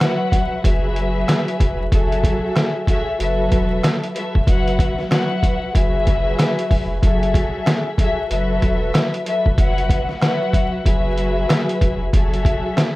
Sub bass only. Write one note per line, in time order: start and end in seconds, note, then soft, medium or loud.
0.64 1.24 F#1 loud
1.60 1.89 F1 medium
1.92 2.40 F#1 loud
3.20 3.49 F#1 loud
3.52 3.81 E1 medium
4.35 4.46 F1 medium
4.48 4.95 F#1 loud
5.75 6.35 F#1 loud
6.71 7.00 F1 medium
7.03 7.50 F#1 loud
8.31 8.59 F#1 loud
8.63 8.91 E1 medium
9.46 9.57 F1 loud
9.58 10.06 F#1 loud
10.86 11.46 F#1 loud
11.82 12.10 F1 medium
12.14 12.61 F#1 loud